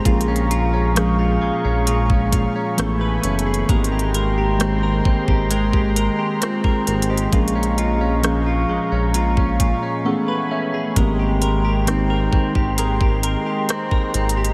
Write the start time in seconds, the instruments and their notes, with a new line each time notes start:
Already playing: clean electric guitar G#3 C4 A#4, analog synth pad A#5
0.04 analog synth bass A#1, clean electric guitar A#2 F4, synth keys F3 G#3 A#3 C#4 G#4, analog synth pad G#4 F5 C#6, kick, closed hi-hat
0.21 closed hi-hat
0.28 clean electric guitar C#4
0.36 closed hi-hat
0.51 clean electric guitar F4, closed hi-hat
0.74 clean electric guitar C#4
0.95 synth keys F3 G#3 A#3 C#4 G#4, clean electric guitar G#3, cross-stick, closed hi-hat
1.19 clean electric guitar F4
1.42 analog synth bass A#1, clean electric guitar G#3
1.65 analog synth bass A#1, clean electric guitar C#4
1.87 clean electric guitar A#2 F4, closed hi-hat
2.10 clean electric guitar C#4, kick
2.32 clean electric guitar F4, kick, closed hi-hat
2.56 clean electric guitar C#4
2.77 analog synth bass A1, synth keys E3 A3 B3 C#4 G#4, analog synth pad A3 G#5 B5, clean electric guitar A3, cross-stick, closed hi-hat
3.01 clean electric guitar B4
3.23 analog synth bass F#1, clean electric guitar C#4, closed hi-hat
3.39 closed hi-hat
3.47 clean electric guitar G#4
3.54 closed hi-hat
3.67 analog synth bass G#1, synth keys D#3 G#3 A#3 C4 G4, analog synth pad G#3 G5 A#5 C6, clean electric guitar G#3 A#4, kick, closed hi-hat
3.84 closed hi-hat
3.92 clean electric guitar G4
3.99 closed hi-hat
4.14 clean electric guitar A#4, closed hi-hat
4.38 clean electric guitar G4
4.59 synth keys D#3 G#3 A#3 C4 G4, clean electric guitar C4, cross-stick, closed hi-hat
4.83 clean electric guitar A#4
5.05 analog synth bass G#1, clean electric guitar C4, kick
5.28 analog synth bass G#1, clean electric guitar G4, kick
5.51 clean electric guitar G#3 A#4, closed hi-hat
5.73 clean electric guitar G4, kick
5.96 clean electric guitar A#4, closed hi-hat
6.19 clean electric guitar G4
6.42 clean electric guitar C4, synth keys F4 G#4, cross-stick, closed hi-hat
6.64 clean electric guitar A#4, kick
6.87 analog synth bass G#1, clean electric guitar C4, synth keys G4 A#4, closed hi-hat
7.02 closed hi-hat
7.10 clean electric guitar G4, synth keys C5 D#5
7.17 closed hi-hat
7.31 analog synth bass A#1, clean electric guitar A#2 F4, synth keys F3 G#3 A#3 C#4 G#4, analog synth pad F5 A#5 C#6, kick, closed hi-hat
7.48 closed hi-hat
7.55 clean electric guitar C#4
7.63 closed hi-hat
7.78 clean electric guitar F4, closed hi-hat
8.01 clean electric guitar C#4
8.22 synth keys F3 G#3 A#3 C#4 G#4, clean electric guitar G#3, cross-stick, closed hi-hat
8.46 clean electric guitar F4
8.69 analog synth bass A#1, clean electric guitar G#3
8.92 analog synth bass A#1, clean electric guitar C#4
9.14 clean electric guitar A#2 F4, closed hi-hat
9.37 clean electric guitar C#4, kick
9.60 clean electric guitar F4, synth keys G#5, kick, closed hi-hat
9.83 clean electric guitar C#4
10.04 synth keys E3 A3 B3 C#4 G#4 F#5, analog synth pad A3 G#5 B5, clean electric guitar A3
10.28 clean electric guitar B4
10.51 clean electric guitar C#4, synth keys E5
10.74 clean electric guitar G#4
10.95 analog synth bass G#1, synth keys D#3 G#3 A#3 C4 G4, clean electric guitar G#3 A#4, analog synth pad G#3 G5 A#5 C6, kick, closed hi-hat
11.19 clean electric guitar G4
11.42 clean electric guitar A#4, closed hi-hat
11.65 clean electric guitar G4
11.86 synth keys D#3 G#3 A#3 C4 D#4, clean electric guitar C4, cross-stick, closed hi-hat
12.10 clean electric guitar A#4
12.33 analog synth bass G#1, clean electric guitar C4, kick
12.55 analog synth bass G#1, clean electric guitar G4, kick
12.78 clean electric guitar G#3 A#4, closed hi-hat
13.01 clean electric guitar G4, kick
13.23 clean electric guitar A#4, closed hi-hat
13.47 clean electric guitar G4
13.69 clean electric guitar C4, cross-stick, closed hi-hat
13.91 clean electric guitar A#4, kick
14.14 analog synth bass G#1, clean electric guitar C4, closed hi-hat
14.29 closed hi-hat
14.37 clean electric guitar G4
14.45 closed hi-hat